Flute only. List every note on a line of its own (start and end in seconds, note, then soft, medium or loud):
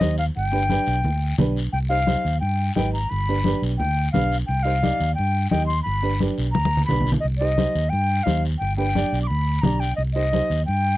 0.00 0.16 D#5 medium
0.18 0.24 F5 medium
0.36 1.35 G5 loud
1.73 1.79 G5 medium
1.89 2.38 F5 loud
2.40 2.73 G5 medium
2.75 2.92 G5 medium
2.93 3.11 A#5 medium
3.10 3.62 B5 loud
3.78 4.11 G5 loud
4.12 4.37 F5 medium
4.46 4.64 G5 medium
4.63 5.14 F5 medium
5.15 5.48 G5 medium
5.50 5.66 G5 medium
5.66 5.82 C6 loud
5.83 6.21 B5 loud
6.52 6.85 A#5 loud
6.86 7.11 B5 medium
7.20 7.26 D#5 medium
7.38 7.91 D#5 medium
7.89 8.25 G5 medium
8.23 8.42 F5 medium
8.58 8.76 G5 medium
8.77 9.19 G5 medium
9.23 9.29 D6 medium
9.27 9.63 B5 medium
9.62 9.81 A#5 medium
9.80 9.95 G5 medium
9.96 10.02 D#5 medium
10.13 10.62 D#5 medium
10.66 10.97 G5 medium